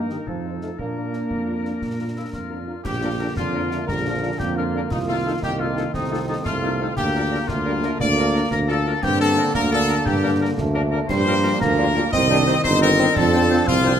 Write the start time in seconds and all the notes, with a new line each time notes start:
Already playing: G2 D#4 A#4
0.10 D#3 D#4 G4 A#4 D#5, snare
0.27 F2 F3 F4 A4, concert bass drum
0.45 D#4 A4 C5 F5
0.61 A3 D#4 A4 C5 F5, snare
0.78 A#2 A#3 D4 A#4, concert bass drum
0.95 D4 F4 A#4 F5
1.13 D4 F4 A#4 F5, snare
1.30 F2, concert bass drum
1.48 D4 F4 A#4 F5
1.64 D4 F4 A#4 F5, snare
1.82 A#2, concert bass drum, snare
1.99 D4 F4 A#4 F5
2.15 D4 E4 F4 A#4 F5 E6
2.33 F2 F4 F6, concert bass drum, snare
2.50 D4 F4 A#4 F5
2.68 D4 F4 A#4 F5
2.84 A#1 D3 A#3 G4 G6, concert bass drum, snare, crash
3.02 A#3 D4 F4 A#4
3.19 A#3 D4 F4 A#4
3.36 F2 D4 F4 F6, concert bass drum, snare
3.53 F3 A#3 D4 F4 A#4
3.70 A3 A#3 D4 F4 A#4, snare
3.88 A#1 G3 A#4 A#6, concert bass drum, snare
4.05 F3 A#3 D4 F4 A#4
4.22 A#3 D4 F4 A#4
4.39 F2 A#3 G4 G6, concert bass drum, snare
4.56 A#3 D4 F4 A#4 F6
4.74 A#3 D4 F4 A#4
4.91 C2 D#3 D#4 F4 D#6, concert bass drum, snare, crash
5.08 A3 D#4 F4 A4 F6
5.25 A3 D#4 F4 A4
5.42 C2 D#4 G4 G6, concert bass drum, snare
5.59 A3 D#4 F4 A4 F6
5.76 A3 D#4 F4 A4, snare
5.94 C2 A3 C4 D#4 D#6, concert bass drum, snare
6.11 A3 D#4 F4 A4
6.28 A3 D#4 F4 A4 D#6
6.45 C2 A3 F4 F6, concert bass drum, snare
6.63 A3 A#3 D#4 F4 A4
6.80 A3 C4 D#4 F4 A4
6.97 D2 D3 A#3 G4 G6, concert bass drum, snare, crash
7.14 A#3 D4 F4 A#4
7.31 A#3 D4 F4 A#4
7.48 D2 A3 F4 F6, concert bass drum, snare
7.65 G3 A#3 D4 F4 A#4
7.83 A3 A#3 D4 F4 A#4, snare
8.00 D2 A#3 D5 D7, concert bass drum, snare
8.17 A#3 D4 F4 A#4
8.34 A#3 D4 F4 A#4
8.51 D2 A#4 A#6, concert bass drum, snare
8.68 A#3 D4 F4 A4 A#4 A6
8.85 A#3 D4 F4 A#4
9.02 G2 D3 A#3 C4 G4 G6, concert bass drum, snare, crash
9.20 A#3 D4 A4 A#4 A6
9.36 A#3 D4 A#4
9.55 D2 A#3 A#4 A#6, concert bass drum, snare
9.70 A#3 D4 A4 A#4 A6
9.88 A#3 D4 A#4, snare
10.05 G2 G4 G6, concert bass drum, snare
10.23 A#3 D4 A#4
10.40 A#3 D4 A#4
10.58 D2 A3, concert bass drum, snare
10.74 A#3 D4 A#4
10.91 A#3 D4 A#4
11.09 G2 F3 G3 A#3 C5 C7, concert bass drum, snare, crash
11.26 G3 D4 F4 A#4
11.43 G3 D4 F4 A#4
11.61 D2 A#3 A#4 A#6, concert bass drum, snare
11.78 G3 D4 F4 A#4
11.94 G3 D4 F4 A#4, snare
12.12 C2 D#3 C4 D#5 D#7, concert bass drum, snare
12.28 G3 C4 D4 D#4 C5
12.46 G3 C4 D#4 C5
12.63 G1 D#4 C5 C7, concert bass drum, snare
12.81 G3 C4 D#4 A#4 C5 A#6
12.98 G3 C4 D#4 C5
13.15 F2 F3 D4 A4 A6, concert bass drum, snare, crash
13.33 F3 C4 F4 C5
13.50 F3 C4 F4 C5
13.67 C2 C4 F4 F6, concert bass drum, snare
13.85 F3 C4 D4 F4 C5